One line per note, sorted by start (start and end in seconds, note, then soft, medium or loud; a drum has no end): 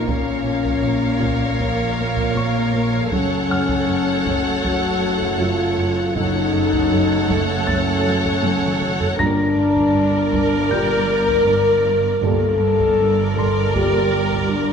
0.00 1.19 A#4 soft
0.00 1.19 A#5 soft
0.06 3.08 A#1 soft
0.06 3.08 F2 medium
0.06 3.07 A#2 medium
0.06 0.30 A#2 medium
0.06 3.08 A#3 medium
0.06 1.56 C#4 medium
0.06 3.08 A#4 soft
0.06 3.08 C#5 soft
0.06 3.08 F5 soft
0.06 taiko medium
0.46 0.68 A#2 soft
0.65 taiko medium
0.83 1.06 A#2 soft
1.20 1.44 A#2 medium
1.20 taiko medium
1.58 1.81 A#3 soft
1.58 3.11 A#3 medium
1.58 taiko medium
1.98 2.20 A#3 soft
2.17 taiko medium
2.36 2.59 A#2 medium
2.36 4.60 C#6 soft
2.73 2.96 A#2 soft
3.11 6.12 F#1 medium
3.11 6.11 F#2 medium
3.11 5.98 F#2 medium
3.11 3.34 F#2 medium
3.11 5.98 A3 medium
3.11 4.60 C#4 medium
3.11 6.15 A4 medium
3.11 6.11 C#5 medium
3.11 6.15 F#5 medium
3.11 taiko medium
3.49 3.72 F#2 soft
3.49 5.74 F#5 soft
3.49 5.74 F6 soft
3.69 taiko medium
3.87 4.10 F#2 soft
4.25 4.48 F#2 medium
4.25 taiko medium
4.63 4.86 F#3 soft
4.63 5.40 F#4 medium
4.63 taiko medium
5.01 5.24 F#3 soft
5.21 taiko medium
5.40 5.62 F#2 medium
5.40 6.16 F4 medium
5.77 6.00 F#2 soft
6.15 9.16 F#1 medium
6.15 9.15 F#2 medium
6.15 6.38 F#2 medium
6.15 9.15 F#2 medium
6.15 9.15 A3 medium
6.15 7.52 D#4 loud
6.15 9.16 A4 medium
6.15 9.15 C#5 medium
6.15 9.16 F#5 medium
6.15 taiko medium
6.53 6.76 F#2 medium
6.73 taiko medium
6.91 7.14 F#2 medium
7.28 7.51 F#2 medium
7.28 taiko medium
7.67 7.90 F#3 soft
7.67 9.17 C#4 medium
7.67 9.91 A6 medium
7.67 taiko medium
8.06 8.28 F#3 soft
8.25 taiko medium
8.43 8.66 F#2 medium
8.43 taiko high medium
8.62 taiko mid medium
8.81 9.04 F#2 soft
8.81 taiko mid medium
9.00 taiko low medium
9.18 12.20 G1 medium
9.18 12.19 G2 medium
9.18 9.42 G2 medium
9.18 9.47 A#2 medium
9.18 9.47 G3 medium
9.18 10.67 D4 loud
9.18 12.19 A#4 medium
9.18 12.19 D5 medium
9.18 11.43 A#5 soft
9.18 11.43 A#6 medium
9.18 taiko medium
9.57 9.80 G2 medium
9.76 taiko medium
9.96 10.18 G2 soft
10.33 10.56 G2 medium
10.33 taiko medium
10.71 10.98 A#2 medium
10.71 10.98 G3 medium
10.71 10.94 G3 soft
10.71 12.24 A#4 loud
10.71 12.95 G6 medium
10.71 taiko medium
11.08 11.31 G3 soft
11.28 taiko medium
11.46 11.69 G2 medium
11.84 12.07 G2 soft
12.22 14.73 G1 medium
12.22 12.45 G2 medium
12.22 14.73 G2 medium
12.22 12.50 A#2 medium
12.22 12.50 G3 medium
12.22 13.72 A4 loud
12.22 14.73 A#4 medium
12.22 14.73 D5 medium
12.22 taiko medium
12.59 12.82 G2 medium
12.80 taiko medium
12.98 13.21 G2 soft
13.35 13.59 G2 medium
13.35 14.73 C6 soft
13.35 taiko medium
13.74 14.02 A#2 medium
13.74 13.97 G3 soft
13.74 14.02 G3 medium
13.74 14.51 G4 medium
13.74 taiko medium
14.12 14.35 G3 soft
14.32 taiko medium
14.49 14.72 G2 medium
14.49 14.73 D4 medium